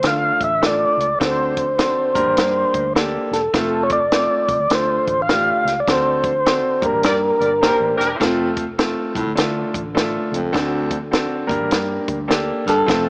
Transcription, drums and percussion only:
0.03 snare loud
0.03 closed hi-hat loud
0.41 kick medium
0.41 closed hi-hat medium
0.63 snare loud
0.63 closed hi-hat medium
1.00 closed hi-hat medium
1.21 kick loud
1.21 snare loud
1.21 closed hi-hat medium
1.57 kick medium
1.57 closed hi-hat medium
1.79 snare loud
1.79 closed hi-hat medium
2.15 kick medium
2.15 closed hi-hat medium
2.37 snare loud
2.37 closed hi-hat loud
2.74 kick medium
2.74 closed hi-hat medium
2.96 snare loud
2.96 closed hi-hat medium
3.33 snare soft
3.33 closed hi-hat medium
3.54 kick medium
3.54 snare loud
3.54 closed hi-hat medium
3.90 kick medium
3.90 closed hi-hat medium
4.12 snare loud
4.12 closed hi-hat medium
4.48 kick medium
4.48 closed hi-hat medium
4.70 snare loud
4.70 closed hi-hat medium
5.07 kick medium
5.07 closed hi-hat medium
5.29 snare loud
5.29 closed hi-hat medium
5.67 snare soft
5.67 closed hi-hat medium
5.88 kick medium
5.88 snare medium
5.88 closed hi-hat medium
6.24 kick medium
6.24 closed hi-hat medium
6.46 snare loud
6.46 closed hi-hat medium
6.82 kick medium
6.82 closed hi-hat medium
7.03 snare loud
7.03 closed hi-hat loud
7.41 closed hi-hat medium
7.63 snare loud
7.63 closed hi-hat medium
8.01 snare soft
8.01 closed hi-hat medium
8.21 kick medium
8.21 snare medium
8.21 closed hi-hat medium
8.57 kick medium
8.57 closed hi-hat medium
8.79 snare loud
8.79 closed hi-hat medium
9.15 kick medium
9.15 closed hi-hat medium
9.37 snare loud
9.37 closed hi-hat loud
9.74 kick medium
9.74 closed hi-hat medium
9.97 snare loud
9.97 closed hi-hat medium
10.34 closed hi-hat medium
10.54 kick loud
10.54 snare loud
10.54 closed hi-hat medium
10.91 kick medium
10.91 closed hi-hat medium
11.13 snare loud
11.13 closed hi-hat medium
11.49 kick medium
11.49 closed hi-hat medium
11.71 snare loud
11.71 closed hi-hat loud
12.08 kick medium
12.08 closed hi-hat medium
12.31 snare loud
12.31 closed hi-hat medium
12.67 snare soft
12.67 closed hi-hat medium
12.88 kick loud
12.88 snare medium
12.88 closed hi-hat medium

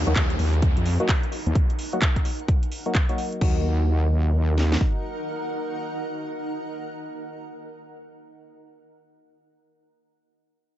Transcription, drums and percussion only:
0.07 closed hi-hat soft
0.16 kick loud
0.16 clap loud
0.16 closed hi-hat medium
0.30 closed hi-hat medium
0.39 open hi-hat medium
0.54 closed hi-hat soft
0.62 kick loud
0.62 closed hi-hat medium
0.77 closed hi-hat medium
0.86 open hi-hat loud
1.00 closed hi-hat soft
1.09 kick loud
1.09 clap loud
1.09 closed hi-hat medium
1.23 closed hi-hat medium
1.32 open hi-hat medium
1.47 closed hi-hat soft
1.55 kick loud
1.55 closed hi-hat medium
1.70 closed hi-hat medium
1.79 open hi-hat loud
2.02 kick loud
2.02 clap loud
2.02 closed hi-hat medium
2.16 kick medium
2.16 closed hi-hat medium
2.25 open hi-hat medium
2.39 closed hi-hat soft
2.48 kick loud
2.48 closed hi-hat medium
2.63 closed hi-hat medium
2.72 open hi-hat loud
2.86 closed hi-hat soft
2.95 kick loud
2.95 clap loud
2.95 closed hi-hat medium
3.09 closed hi-hat medium
3.18 open hi-hat medium
3.33 closed hi-hat soft
3.41 kick loud
3.41 crash medium
4.58 snare medium
4.72 snare medium
4.81 kick medium

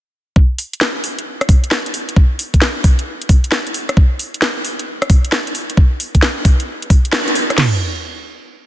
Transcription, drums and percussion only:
0.36 kick loud
0.58 open hi-hat loud
0.73 closed hi-hat medium
0.81 snare loud
1.04 open hi-hat loud
1.19 closed hi-hat medium
1.41 cross-stick medium
1.41 closed hi-hat soft
1.49 kick loud
1.49 open hi-hat loud
1.64 closed hi-hat medium
1.71 snare loud
1.86 closed hi-hat medium
1.94 open hi-hat loud
2.09 closed hi-hat medium
2.16 kick loud
2.39 open hi-hat loud
2.54 kick medium
2.54 closed hi-hat medium
2.62 snare loud
2.84 kick loud
2.84 open hi-hat loud
2.99 closed hi-hat medium
3.22 closed hi-hat soft
3.29 kick loud
3.29 open hi-hat loud
3.44 closed hi-hat medium
3.52 snare loud
3.67 closed hi-hat soft
3.74 open hi-hat loud
3.89 cross-stick medium
3.89 closed hi-hat medium
3.97 kick loud
4.19 open hi-hat loud
4.34 closed hi-hat medium
4.42 snare loud
4.65 open hi-hat loud
4.79 closed hi-hat medium
5.02 cross-stick medium
5.02 closed hi-hat soft
5.10 kick loud
5.10 open hi-hat loud
5.25 closed hi-hat medium
5.32 snare loud
5.47 closed hi-hat soft
5.55 open hi-hat loud
5.70 closed hi-hat medium
5.77 kick loud
6.00 open hi-hat loud
6.15 kick medium
6.15 closed hi-hat medium
6.22 cross-stick soft
6.22 snare loud
6.45 kick loud
6.45 open hi-hat medium
6.60 closed hi-hat medium
6.82 closed hi-hat medium
6.90 kick loud
6.90 open hi-hat loud
7.05 closed hi-hat medium
7.13 snare loud
7.28 closed hi-hat soft
7.35 open hi-hat loud
7.50 cross-stick medium
7.50 closed hi-hat medium
7.58 snare loud
7.58 floor tom loud
7.58 crash medium

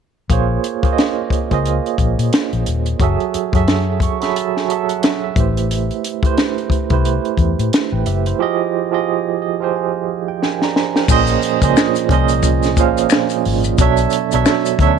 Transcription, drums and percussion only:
0.30 kick medium
0.30 closed hi-hat medium
0.64 closed hi-hat medium
0.83 kick medium
0.83 closed hi-hat soft
0.98 snare medium
0.98 closed hi-hat medium
1.30 kick medium
1.30 closed hi-hat medium
1.51 kick medium
1.51 closed hi-hat soft
1.65 closed hi-hat medium
1.86 closed hi-hat soft
1.98 kick medium
1.98 closed hi-hat medium
2.19 closed hi-hat soft
2.33 snare loud
2.33 closed hi-hat medium
2.53 closed hi-hat soft
2.66 closed hi-hat medium
2.86 closed hi-hat soft
3.00 kick medium
3.00 closed hi-hat medium
3.20 closed hi-hat soft
3.34 closed hi-hat medium
3.53 kick medium
3.53 closed hi-hat soft
3.68 snare medium
3.68 closed hi-hat medium
4.00 kick medium
4.00 closed hi-hat medium
4.22 snare soft
4.22 closed hi-hat soft
4.36 closed hi-hat medium
4.57 snare soft
4.70 closed hi-hat soft
4.89 closed hi-hat soft
5.03 snare loud
5.03 closed hi-hat medium
5.36 kick loud
5.36 closed hi-hat medium
5.57 closed hi-hat soft
5.71 closed hi-hat medium
5.91 closed hi-hat soft
6.04 closed hi-hat medium
6.23 kick medium
6.23 closed hi-hat soft
6.38 snare medium
6.38 closed hi-hat medium
6.58 closed hi-hat soft
6.70 kick medium
6.70 closed hi-hat medium
6.90 kick medium
6.90 closed hi-hat soft
7.05 closed hi-hat medium
7.25 closed hi-hat soft
7.37 kick medium
7.37 closed hi-hat soft
7.59 closed hi-hat soft
7.73 snare loud
7.73 closed hi-hat medium
8.06 closed hi-hat medium
8.26 closed hi-hat soft
10.43 snare medium
10.62 snare medium
10.76 snare medium
10.96 snare medium
11.08 kick loud
11.08 crash loud
11.08 maracas medium
11.27 closed hi-hat soft
11.27 maracas soft
11.42 closed hi-hat medium
11.42 maracas soft
11.62 kick medium
11.62 closed hi-hat medium
11.62 maracas soft
11.77 finger snap medium
11.77 snare loud
11.77 maracas medium
11.95 closed hi-hat medium
11.95 maracas soft
12.09 kick medium
12.09 closed hi-hat medium
12.29 closed hi-hat soft
12.29 maracas soft
12.43 kick medium
12.43 closed hi-hat medium
12.43 maracas medium
12.63 snare soft
12.63 closed hi-hat soft
12.63 maracas soft
12.77 kick medium
12.77 closed hi-hat medium
12.77 maracas soft
12.98 closed hi-hat medium
12.98 maracas soft
13.10 finger snap medium
13.10 snare loud
13.10 maracas medium
13.30 closed hi-hat medium
13.30 maracas soft
13.45 open hi-hat medium
13.64 closed hi-hat soft
13.64 maracas soft
13.78 kick loud
13.78 closed hi-hat medium
13.78 maracas medium
13.97 closed hi-hat soft
13.97 maracas soft
14.10 closed hi-hat medium
14.10 maracas soft
14.32 closed hi-hat medium
14.32 maracas soft
14.46 finger snap medium
14.46 snare loud
14.46 maracas medium
14.65 closed hi-hat medium
14.65 maracas soft
14.79 kick medium
14.79 closed hi-hat medium

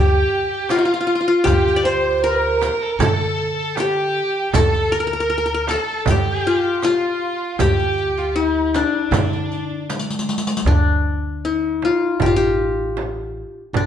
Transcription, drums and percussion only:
0.12 darbuka ka soft
0.31 darbuka ka soft
0.69 riq soft
0.69 darbuka tek medium
0.69 frame drum medium
1.45 riq medium
1.45 frame drum medium
1.45 darbuka dum medium
1.67 riq soft
1.86 riq soft
2.24 darbuka ka soft
2.62 riq soft
2.62 frame drum medium
3.00 riq medium
3.00 frame drum loud
3.00 darbuka dum medium
3.19 darbuka ka soft
3.39 darbuka ka soft
3.77 riq soft
3.77 darbuka tek medium
3.77 frame drum medium
4.54 riq medium
4.54 darbuka dum medium
4.54 frame drum loud
4.73 riq soft
4.73 darbuka ka soft
4.92 riq soft
4.92 darbuka ka soft
5.30 darbuka ka soft
5.67 riq medium
5.67 darbuka tek medium
5.67 frame drum medium
6.06 riq medium
6.06 frame drum medium
6.06 darbuka dum medium
6.26 darbuka ka soft
6.82 riq soft
6.82 darbuka tek medium
6.82 frame drum medium
7.59 riq medium
7.59 frame drum medium
7.59 darbuka dum medium
7.79 riq soft
7.98 riq soft
7.98 darbuka ka soft
8.17 riq soft
8.74 riq soft
8.74 frame drum medium
9.12 riq medium
9.12 frame drum loud
9.12 darbuka dum medium
9.33 riq soft
9.33 darbuka ka soft
9.52 riq soft
9.52 darbuka ka soft
9.90 riq medium
9.90 darbuka tek medium
9.90 frame drum medium
9.99 riq medium
10.10 riq medium
10.19 riq medium
10.29 riq medium
10.38 riq medium
10.47 riq medium
10.57 riq medium
10.66 frame drum medium
10.66 darbuka dum medium
11.82 darbuka tek medium
11.82 frame drum medium
12.20 frame drum medium
12.20 darbuka dum medium
12.40 darbuka ka soft
12.97 darbuka tek medium
12.97 frame drum medium
13.74 frame drum medium
13.74 darbuka dum medium

